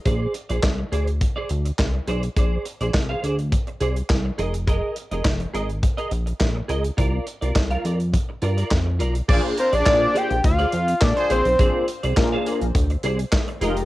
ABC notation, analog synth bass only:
X:1
M:4/4
L:1/16
Q:1/4=104
K:Bbmix
V:1 name="Analog synth bass" clef=bass
B,,,2 z B,,, C,,2 D,,3 z D,,2 C,,2 =B,,,2 | B,,,2 z B,,, C,,2 D,,3 z C,,2 C,,2 F,,,2- | F,,,2 z F,,, F,,,2 A,,,3 z B,,,2 B,,,2 _D,,2 | C,,2 z C,, C,,2 F,,3 z G,,2 F,,2 =B,,,2 |
B,,, z2 B,,, B,,2 z B,,, D,,2 F,,2 B,, z B,,, =B,,, | B,,, z2 C,, B,,2 z B,,, D,,2 C,,2 z2 F,,,2 |]